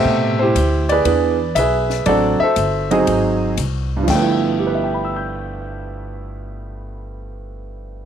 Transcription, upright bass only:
X:1
M:4/4
L:1/8
Q:"Swing" 1/4=119
K:Gmix
V:1 name="Upright bass" clef=bass
A,,2 D,,2 E,,2 B,,,2 | A,,, z G,,,2 _A,,,2 C,,2 | G,,,8- | G,,,8 |]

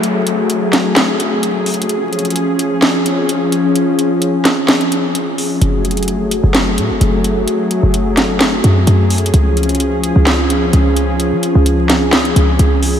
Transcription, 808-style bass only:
X:1
M:4/4
L:1/16
Q:1/4=129
K:F#m
V:1 name="808-style bass" clef=bass
z16 | z16 | z16 | F,,,6- F,,, F,,,3 A,, F,,, F,,,4 |
z3 F,,,6- F,,, F,,2 F,,4 | C,,6- C,, C,,4- C,, C,,4- | C,, ^E,2 C,,6- C,, C,,2 C,,4 |]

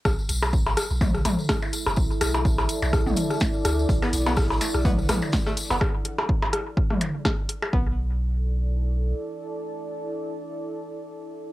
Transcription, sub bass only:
X:1
M:4/4
L:1/16
Q:"Swing 16ths" 1/4=125
K:Bm
V:1 name="Sub bass" clef=bass
B,,, z B,,,3 A,,, z B,,,3 A,,, z4 F,,, | B,,, z B,,,3 A,,, z B,,,3 z4 D,,2 | B,,, z B,,,3 A,,, z B,,,3 A,,, z4 F,,, | z16 |
B,,,12 z4 | z16 |]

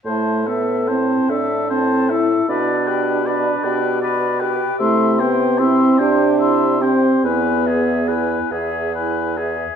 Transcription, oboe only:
X:1
M:6/8
L:1/8
Q:3/8=49
K:Am
V:1 name="Oboe"
c A c A c A | d B d B d B | e c e c e c | B ^G B G B G |]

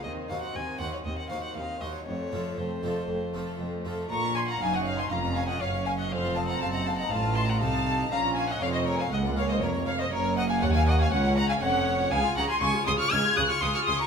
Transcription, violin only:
X:1
M:4/4
L:1/16
Q:1/4=120
K:Bbm
V:1 name="Violin"
e2 f g a2 g d e g f g f2 e d | d4 c8 z4 | b2 a g f e d a f2 f e d2 f e | c2 f g f g f g f2 =a g f4 |
f2 f e d c B f e2 d c B2 d c | B2 e f d f e f d2 g f d4 | [K:Db] f2 g a a2 c' d' f'2 e' d' c' d' c' b |]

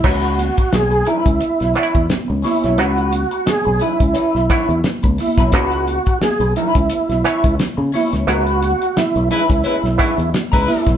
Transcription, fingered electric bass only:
X:1
M:4/4
L:1/16
Q:"Swing 16ths" 1/4=88
K:C#m
V:1 name="Fingered electric bass" clef=bass
C,,3 z B,,,2 z C,, z B,,, z E,, z C,, z B,,, | C,,3 z2 B,,, z C,, z B,,, z E,, z C,, z B,,, | C,,3 z2 B,,, z C,, z B,,, z C,, z C, z C,, | C,,3 z2 B,,, z C,, z B,,, z E,, z C,, z B,,, |]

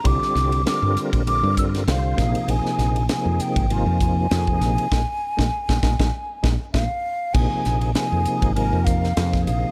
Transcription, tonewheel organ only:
X:1
M:4/4
L:1/16
Q:"Swing 16ths" 1/4=99
K:Cphr
V:1 name="Tonewheel organ"
[=D,G,CFG]4 [D,G,CFB]4 [D,G,CFB]4 [D,G,CFc]2 [C,F,B,EA]2- | [C,F,B,EA]4 [C,F,B,EA]4 [C,F,B,EF]4 [C,F,B,EA]4 | [A,B,E] z2 [A,B,E] z [A,B,E] [A,B,E] [A,B,E] z2 [A,B,E] z [A,B,E] z3 | [C,F,B,EA]4 [C,F,B,EA]4 [C,F,B,EB]4 [C,F,B,EA]4 |]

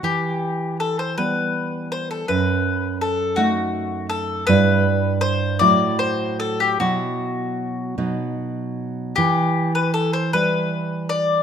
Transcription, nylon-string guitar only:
X:1
M:6/8
L:1/8
Q:3/8=52
K:Em
V:1 name="Nylon-string guitar" clef=bass
E,3 [G,B,]3 | F,,3 [A,^D]3 | [G,,G,E]3 [A,,F,E]3 | [B,,F,E]3 [B,,F,^D]3 |
E,3 [G,E]3 |]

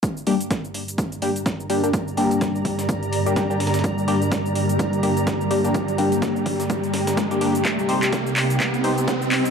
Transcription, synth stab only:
X:1
M:4/4
L:1/16
Q:"Swing 16ths" 1/4=126
K:Gm
V:1 name="Synth stab"
z2 [G,B,DG] z6 z [G,B,DG] z3 [G,B,DG] [G,B,DG] | z2 [G,B,DG]8- [G,B,DG] [G,B,DG] [G,B,DG] [G,B,DG] z2 | z2 [G,B,DG] z6 z [G,B,DG] z3 [G,B,DG] [G,B,DG] | z2 [G,B,DG]8- [G,B,DG] z2 [G,B,DG] [G,B,DG] z |
z2 [CEGc] z6 z [CEGc] z4 z |]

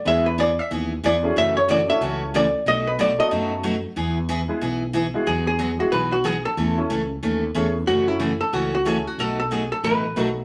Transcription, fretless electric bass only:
X:1
M:4/4
L:1/8
Q:"Swing" 1/4=184
K:E
V:1 name="Fretless electric bass" clef=bass
E,,4 D,,2 E,,2 | F,,4 C,,4 | B,,,4 F,,4 | E,,4 B,,,4 |
E,,4 B,,,4 | E,,2 C,,2 D,,2 E,,2 | F,,4 C,,4 | B,,,4 A,,,2 B,,,2 |]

